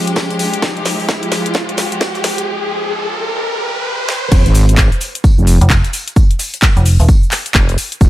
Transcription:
0.00 4.28 F3 medium
0.00 4.28 G#3 medium
0.00 4.28 G4 medium
0.00 riser medium
0.07 closed hi-hat soft
0.07 closed hi-hat medium
0.16 kick loud
0.16 snare medium
0.16 snare loud
0.16 tambourine medium
0.30 closed hi-hat soft
0.39 open hi-hat loud
0.39 tambourine medium
0.54 closed hi-hat medium
0.62 kick loud
0.62 snare medium
0.62 tambourine medium
0.77 closed hi-hat soft
0.85 snare medium
0.85 open hi-hat loud
0.85 tambourine medium
1.00 open hi-hat medium
1.09 kick loud
1.09 snare medium
1.09 snare loud
1.09 tambourine medium
1.23 closed hi-hat soft
1.32 snare medium
1.32 open hi-hat loud
1.32 tambourine medium
1.46 closed hi-hat medium
1.54 kick loud
1.54 snare medium
1.54 tambourine medium
1.69 closed hi-hat medium
1.77 snare medium
1.77 open hi-hat loud
1.77 tambourine medium
1.92 closed hi-hat medium
2.00 kick loud
2.00 snare loud
2.00 snare medium
2.00 tambourine medium
2.14 snare medium
2.14 closed hi-hat soft
2.24 snare medium
2.24 open hi-hat loud
2.24 tambourine medium
2.38 closed hi-hat medium
4.09 snare medium
4.32 4.44 F1 loud
4.32 kick loud
4.32 crash loud
4.32 tambourine medium
4.32 shaker soft
4.46 4.90 G#1 medium
4.46 closed hi-hat medium
4.46 shaker soft
4.55 open hi-hat loud
4.55 tambourine medium
4.55 shaker medium
4.69 closed hi-hat medium
4.69 shaker soft
4.77 kick loud
4.77 snare loud
4.77 clap loud
4.77 tambourine medium
4.77 shaker soft
4.92 closed hi-hat soft
4.92 shaker soft
5.01 open hi-hat loud
5.01 tambourine medium
5.01 shaker medium
5.15 closed hi-hat medium
5.15 shaker soft
5.24 kick loud
5.24 tambourine medium
5.24 shaker soft
5.38 5.59 F1 medium
5.38 shaker soft
5.47 open hi-hat loud
5.47 tambourine medium
5.47 shaker medium
5.61 5.82 F1 loud
5.61 closed hi-hat medium
5.61 shaker soft
5.70 kick loud
5.70 snare loud
5.70 clap loud
5.70 tambourine loud
5.70 shaker soft
5.84 snare medium
5.84 closed hi-hat medium
5.84 shaker soft
5.93 open hi-hat loud
5.93 tambourine medium
5.93 shaker medium
6.08 closed hi-hat medium
6.08 shaker soft
6.16 kick loud
6.16 tambourine medium
6.16 shaker soft
6.31 closed hi-hat medium
6.31 shaker soft
6.39 snare soft
6.39 open hi-hat loud
6.39 tambourine medium
6.39 shaker medium
6.54 closed hi-hat medium
6.54 shaker soft
6.62 kick loud
6.62 snare loud
6.62 clap loud
6.62 tambourine medium
6.62 shaker soft
6.77 6.97 F1 loud
6.77 closed hi-hat soft
6.77 shaker soft
6.85 open hi-hat medium
6.85 open hi-hat loud
6.85 shaker medium
7.00 7.07 D#1 medium
7.00 closed hi-hat soft
7.00 open hi-hat medium
7.00 shaker soft
7.08 kick loud
7.08 tambourine medium
7.08 shaker soft
7.23 shaker soft
7.31 clap medium
7.31 open hi-hat loud
7.31 tambourine medium
7.31 shaker medium
7.46 closed hi-hat medium
7.46 closed hi-hat soft
7.46 shaker soft
7.54 7.76 F1 loud
7.54 kick loud
7.54 snare loud
7.54 clap loud
7.54 tambourine medium
7.54 shaker soft
7.69 closed hi-hat medium
7.69 closed hi-hat soft
7.69 shaker soft
7.78 open hi-hat loud
7.78 tambourine medium
7.78 shaker medium
7.92 closed hi-hat medium
7.92 shaker soft
8.01 8.10 F1 loud
8.01 kick loud
8.01 tambourine medium
8.01 shaker soft

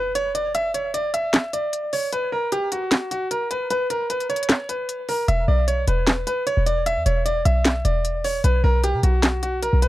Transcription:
0.00 0.10 B4 medium
0.00 impact medium
0.15 0.30 C#5 loud
0.15 closed hi-hat medium
0.35 0.50 D5 medium
0.35 closed hi-hat medium
0.55 0.70 E5 medium
0.55 closed hi-hat medium
0.74 0.89 C#5 medium
0.74 closed hi-hat medium
0.94 1.09 D5 medium
0.94 closed hi-hat medium
1.14 1.51 E5 medium
1.14 closed hi-hat medium
1.34 snare loud
1.34 clap medium
1.34 closed hi-hat medium
1.53 1.90 D5 medium
1.53 closed hi-hat medium
1.73 closed hi-hat medium
1.93 2.08 C#5 medium
1.93 open hi-hat medium
2.13 2.28 B4 medium
2.13 closed hi-hat medium
2.32 2.47 A#4 medium
2.52 2.67 G4 medium
2.52 closed hi-hat medium
2.72 3.09 F#4 medium
2.72 closed hi-hat medium
2.91 snare loud
2.91 clap medium
2.91 closed hi-hat medium
3.11 3.26 F#4 medium
3.11 closed hi-hat medium
3.31 3.46 A#4 medium
3.31 closed hi-hat medium
3.51 3.66 B4 medium
3.51 closed hi-hat medium
3.70 3.86 B4 medium
3.70 closed hi-hat medium
3.90 4.05 A#4 medium
3.90 closed hi-hat medium
4.10 4.25 B4 medium
4.10 closed hi-hat medium
4.20 closed hi-hat soft
4.29 4.67 C#5 medium
4.29 closed hi-hat soft
4.36 closed hi-hat medium
4.43 closed hi-hat medium
4.49 cross-stick medium
4.49 snare loud
4.49 clap medium
4.49 closed hi-hat medium
4.69 5.06 B4 medium
4.69 closed hi-hat medium
4.89 closed hi-hat medium
5.09 5.24 A#4 medium
5.09 open hi-hat medium
5.28 5.47 E1 loud
5.28 5.43 E5 medium
5.28 closed hi-hat medium
5.48 5.86 B1 loud
5.48 5.63 D5 medium
5.68 5.83 C#5 medium
5.68 closed hi-hat medium
5.88 6.25 E1 loud
5.88 6.25 B4 medium
5.88 closed hi-hat medium
6.07 snare loud
6.07 clap medium
6.07 closed hi-hat medium
6.27 6.42 B4 medium
6.27 closed hi-hat medium
6.47 6.62 C#5 medium
6.47 closed hi-hat medium
6.57 6.98 E1 loud
6.66 6.82 D5 medium
6.66 closed hi-hat medium
6.86 7.01 E5 medium
6.86 closed hi-hat medium
6.97 7.05 E2 medium
7.06 7.44 E1 loud
7.06 7.21 C#5 medium
7.06 closed hi-hat medium
7.26 7.41 D5 medium
7.26 closed hi-hat medium
7.45 7.83 B1 loud
7.45 7.82 E5 medium
7.45 closed hi-hat medium
7.65 snare loud
7.65 clap medium
7.65 closed hi-hat medium
7.85 8.42 E1 loud
7.85 8.22 D5 medium
7.85 closed hi-hat medium
8.05 closed hi-hat medium
8.24 8.40 C#5 medium
8.24 open hi-hat medium
8.44 8.63 B1 loud
8.44 8.59 B4 medium
8.44 closed hi-hat medium
8.64 8.96 B1 loud
8.64 8.79 A#4 medium
8.84 8.99 G4 medium
8.84 closed hi-hat medium
8.94 9.03 B2 loud
9.03 9.70 B1 loud
9.03 9.41 F#4 medium
9.03 closed hi-hat medium
9.23 snare loud
9.23 clap medium
9.23 closed hi-hat medium
9.43 9.58 F#4 medium
9.43 closed hi-hat medium
9.62 9.78 A#4 medium
9.62 closed hi-hat medium
9.73 9.88 B1 loud
9.82 9.88 B4 medium
9.82 closed hi-hat medium

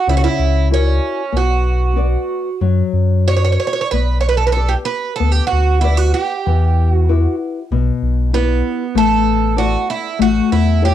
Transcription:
0.07 0.28 C#2 medium
0.07 0.68 C#3 medium
0.07 0.15 E4 medium
0.17 0.22 F#4 medium
0.24 0.68 E4 medium
0.39 1.00 C#2 medium
0.71 1.36 C#4 medium
0.71 1.20 E4 soft
0.71 1.21 F#4 soft
0.71 1.21 A#4 soft
1.32 2.16 B1 medium
1.32 1.94 B3 medium
1.37 2.59 F#4 medium
1.96 2.48 F#4 soft
1.96 2.48 B4 soft
1.96 2.48 D5 soft
2.61 2.82 F#2 medium
2.61 3.25 F#3 medium
2.93 3.58 F#2 medium
3.27 3.80 F#4 soft
3.27 3.80 B4 soft
3.27 3.34 C#5 medium
3.27 3.80 D5 soft
3.36 3.43 C#5 medium
3.44 3.51 C#5 medium
3.52 3.58 C#5 medium
3.60 3.66 C#5 medium
3.67 3.72 C#5 medium
3.73 3.80 C#5 medium
3.81 3.88 C#5 medium
3.91 4.75 B1 medium
3.91 4.55 B3 medium
3.91 4.18 B4 medium
4.21 4.28 C#5 medium
4.29 4.37 B4 medium
4.37 4.46 A4 medium
4.47 4.52 B4 medium
4.52 4.71 A4 medium
4.57 5.08 G4 soft
4.57 5.08 B4 soft
4.57 5.08 D5 soft
4.69 4.74 G4 medium
4.85 5.15 B4 medium
5.16 5.81 B3 medium
5.16 5.32 A4 medium
5.20 5.41 D2 medium
5.32 5.46 G4 medium
5.47 5.81 F#4 medium
5.52 6.13 D2 medium
5.81 5.97 E4 medium
5.81 6.34 G4 soft
5.81 6.34 B4 soft
5.81 6.33 D5 soft
5.97 6.14 F#4 medium
6.14 6.93 G4 medium
6.46 7.27 E2 medium
6.46 7.06 E3 medium
6.93 7.35 F#4 medium
7.09 7.58 E4 soft
7.09 7.59 G4 soft
7.09 7.58 B4 soft
7.71 7.91 B1 medium
7.71 8.31 B2 medium
8.02 8.62 B1 medium
8.33 8.96 B3 medium
8.33 8.82 E4 soft
8.33 8.82 G4 soft
8.33 8.83 B4 soft
8.95 9.76 A1 medium
8.95 9.55 A3 medium
8.95 9.54 A4 medium
9.56 10.07 E4 soft
9.56 9.89 F#4 medium
9.56 10.07 A4 soft
9.56 10.07 D5 medium
9.90 10.21 E4 medium
10.19 10.40 A1 loud
10.19 10.81 A3 medium
10.19 10.50 F#4 medium
10.52 10.94 E2 medium
10.52 10.84 E4 medium
10.82 10.94 E4 soft
10.82 10.94 G4 medium
10.82 10.94 A4 soft
10.82 10.94 C#5 soft

